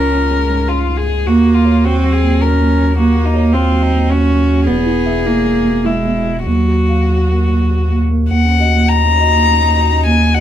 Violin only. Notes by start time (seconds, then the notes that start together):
Already playing: A#4
0.68 F4
0.98 G#4
1.27 F#4
1.55 F4
1.85 F#4
2.13 G#4
2.41 A#4
2.98 F#4
3.25 D#4
3.54 F4
3.82 D#4
4.12 F#4
4.68 G#4
5.86 E4
6.46 F#4
8.31 F#5
8.89 A#5
10.07 G#5
10.34 F#5